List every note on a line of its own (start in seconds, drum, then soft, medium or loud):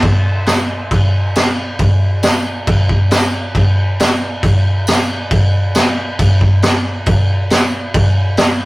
0.02 kick loud
0.02 crash medium
0.46 snare loud
0.46 tambourine loud
0.46 crash medium
0.91 kick loud
0.91 crash medium
1.36 snare loud
1.36 tambourine medium
1.36 crash medium
1.79 kick loud
1.79 crash medium
2.23 snare loud
2.23 tambourine loud
2.23 crash medium
2.67 kick loud
2.67 crash medium
2.89 kick medium
3.11 snare loud
3.11 tambourine loud
3.11 crash medium
3.55 kick loud
3.55 crash medium
4.00 snare loud
4.00 tambourine loud
4.00 crash medium
4.43 kick loud
4.43 crash medium
4.87 snare loud
4.87 tambourine loud
4.87 crash medium
5.31 kick loud
5.31 crash medium
5.75 snare loud
5.75 tambourine loud
5.75 crash medium
6.19 kick loud
6.19 crash medium
6.41 kick medium
6.62 snare loud
6.62 tambourine medium
6.62 crash medium
7.06 kick loud
7.06 crash medium
7.50 snare loud
7.50 tambourine medium
7.50 crash medium
7.94 kick loud
7.94 crash medium
8.37 snare loud
8.37 tambourine medium
8.37 crash medium